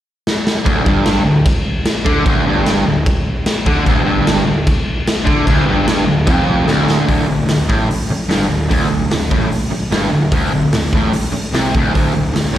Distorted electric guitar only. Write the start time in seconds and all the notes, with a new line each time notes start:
0.64 D2
0.84 G2
1.24 D2
2.05 D3
2.25 D2
2.47 G2
2.87 D2
3.66 D3
3.85 D2
4.04 G2
4.45 D2
5.24 D3
5.46 D2
5.66 G2
6.06 D2
6.26 F2
6.67 D2
7.06 D2
7.27 D2
7.46 D2
7.68 A2
7.90 muted distorted electric guitar stroke
8.10 muted distorted electric guitar stroke
8.29 G2
8.48 D2
8.69 D2
8.90 D2
9.11 D2
9.31 A2
9.51 muted distorted electric guitar stroke
9.71 muted distorted electric guitar stroke
9.92 G2
10.12 D2
10.32 D2
10.54 D2
10.75 D2
10.94 A2
11.14 muted distorted electric guitar stroke
11.32 muted distorted electric guitar stroke
11.53 C3
11.76 D2
11.94 D2
12.14 D2
12.33 D2
12.52 A2